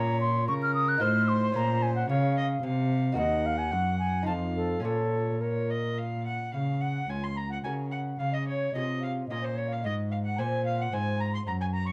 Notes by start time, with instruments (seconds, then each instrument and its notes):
Already playing: lute A#2 C#4 F4 A#4, cello A#2, violin C#5, flute A#5
0.21 flute C6
0.48 cello C#3, lute C#3, violin A#4, flute C#6
0.62 flute F6
0.74 flute D#6
0.88 flute F#6
0.98 cello A2, lute D#4 F4 C5, flute F6
1.02 lute A2, violin C5
1.29 flute C6
1.52 cello A#2, lute C#4 F4 A#4
1.56 lute A#2, flute A#5
1.82 flute G#5
1.96 flute F#5
2.09 cello C#3, lute C#3, violin C#5, flute F5
2.37 violin D#5
2.62 cello C3, lute C3, violin F5
3.12 lute D#4 F#4 A#4
3.17 lute D#2, cello D#2, flute D#5, violin F#5
3.46 flute F5
3.58 flute G#5
3.71 cello F#2, lute F#2, flute F#5
3.99 flute G#5
4.23 lute D#4 F4, flute A5
4.27 lute F2, cello F2, violin F5
4.56 flute A4
4.80 cello A#2, lute C#4 F4, flute A4
4.84 lute A#2, violin C#5
5.41 flute A#4, violin C#5
5.70 violin D#5
5.98 violin F5
6.27 violin F#5
6.54 lute C#3, cello C#3, flute F5, violin F5
6.81 violin F#5, flute F#5
7.09 cello C#2, lute C#4 F4, violin G#5, flute G#5
7.23 flute C6, violin C6
7.36 flute A#5, violin A#5
7.49 flute F#5, violin F#5
7.63 lute C#3 C#4 F#4 A#4, cello C#3, flute G#5, violin G#5
7.90 flute F#5, violin F#5
8.19 cello C#3, lute C#3, flute F5, violin F5
8.32 flute D#5, violin D#5
8.46 flute C#5, violin C#5
8.72 cello C3, lute C3 C#4 F4 G#4, flute D#5, violin D#5
9.01 flute F5, violin F5
9.28 cello A#2, lute A#2 C#4 F4 A#4, flute D#5, violin D#5
9.41 flute C5, violin C5
9.55 flute C#5, violin C#5
9.68 flute F5
9.73 violin F5
9.82 lute G#2, cello G#2, flute D#5, violin D#5
10.11 flute F5, violin F5
10.24 flute F#5, violin F#5
10.36 cello A#2, lute A#2 C4 F4 C5, violin G#5, flute G#5 A#5
10.64 flute F5, violin F5
10.78 flute F#5, violin F#5
10.92 lute G#2 C4 F4 C5, cello G#2, flute G#5, violin G#5
11.19 flute A#5, violin A#5
11.34 flute C6, violin C6
11.46 lute F#2, cello F#2, flute A#5, violin A#5
11.59 flute G#5, violin G#5
11.73 flute A#5, violin A#5
11.86 flute C#6, violin C#6